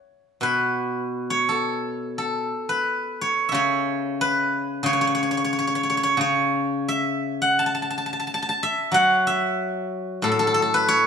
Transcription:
0.00 0.65 C#5 medium
0.00 0.13 E5 medium
0.00 0.18 F#5 medium
0.41 2.51 B2 medium
0.41 2.48 B4 medium
1.30 3.21 C#5 medium
1.49 2.18 A4 medium
2.18 4.38 A4 medium
2.69 4.21 B4 medium
3.21 3.54 C#5 medium
3.49 4.82 C#3 medium
3.49 5.21 E5 medium
3.54 4.86 C#5 medium
4.21 6.26 B4 medium
4.83 6.16 C#3 medium
4.83 4.92 C#5 medium
4.93 5.01 C#5 medium
5.01 5.07 C#5 medium
5.07 5.14 C#5 medium
5.15 5.22 C#5 medium
5.23 5.31 C#5 medium
5.31 5.37 C#5 medium
5.37 5.44 C#5 medium
5.44 5.52 C#5 medium
5.53 5.58 C#5 medium
5.59 5.67 C#5 medium
5.67 5.75 C#5 medium
5.75 5.83 C#5 medium
5.83 5.89 C#5 medium
5.90 5.97 C#5 medium
5.97 6.03 C#5 medium
6.03 6.20 C#5 medium
6.17 8.26 C#3 medium
6.17 8.11 C#5 medium
6.88 8.61 E5 medium
7.42 8.94 F#5 medium
7.59 7.66 A5 medium
7.66 7.74 A5 medium
7.75 7.82 A5 medium
7.82 7.90 A5 medium
7.90 7.97 A5 medium
7.98 8.06 A5 medium
8.06 8.12 A5 medium
8.13 8.19 A5 medium
8.20 8.27 A5 medium
8.27 8.34 A5 medium
8.34 8.42 A5 medium
8.42 8.48 A5 medium
8.49 9.94 A5 medium
8.63 9.27 E5 medium
8.92 10.89 F#3 medium
8.92 10.55 F#5 loud
9.27 10.99 E5 medium
10.22 11.07 A2 medium
10.22 10.31 A4 medium
10.32 10.39 A4 medium
10.39 10.47 A4 medium
10.47 10.54 A4 medium
10.54 10.62 A4 medium
10.62 11.07 A4 medium
10.74 11.07 B4 loud
10.88 11.07 C#5 loud

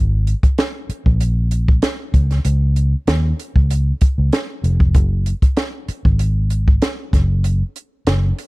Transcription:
0.00 0.33 G#1 medium
0.27 closed hi-hat medium
0.43 muted fingered electric bass stroke soft
0.43 kick medium
0.43 closed hi-hat soft
0.58 snare medium
0.58 closed hi-hat medium
0.89 muted fingered electric bass stroke soft
0.89 closed hi-hat medium
1.06 1.79 A#1 medium
1.06 kick medium
1.21 closed hi-hat medium
1.51 closed hi-hat medium
1.68 kick medium
1.82 snare medium
1.82 closed hi-hat medium
2.14 2.38 C#2 medium
2.14 kick medium
2.14 closed hi-hat medium
2.31 snare soft
2.31 closed hi-hat soft
2.45 2.93 C#2 medium
2.45 closed hi-hat medium
2.76 closed hi-hat medium
3.07 3.32 D#2 medium
3.07 snare medium
3.07 closed hi-hat medium
3.39 closed hi-hat medium
3.56 3.91 C#2 medium
3.56 kick medium
3.70 closed hi-hat medium
4.01 muted fingered electric bass stroke soft
4.01 kick medium
4.01 closed hi-hat medium
4.18 4.29 C#2 medium
4.33 snare medium
4.33 closed hi-hat medium
4.64 4.95 F1 medium
4.64 closed hi-hat medium
4.80 kick medium
4.95 5.32 F#1 medium
4.95 kick loud
4.95 closed hi-hat medium
5.26 closed hi-hat medium
5.42 muted fingered electric bass stroke soft
5.42 kick medium
5.42 closed hi-hat soft
5.57 snare medium
5.57 closed hi-hat medium
5.89 muted fingered electric bass stroke soft
5.89 closed hi-hat medium
6.05 6.78 G#1 medium
6.05 kick medium
6.19 closed hi-hat medium
6.50 closed hi-hat medium
6.68 kick medium
6.82 snare loud
6.82 closed hi-hat medium
7.13 7.61 F#1 medium
7.13 kick medium
7.13 snare soft
7.13 closed hi-hat medium
7.44 closed hi-hat medium
7.76 closed hi-hat medium
8.07 8.31 F#1 medium
8.07 snare loud
8.07 closed hi-hat medium
8.39 closed hi-hat medium

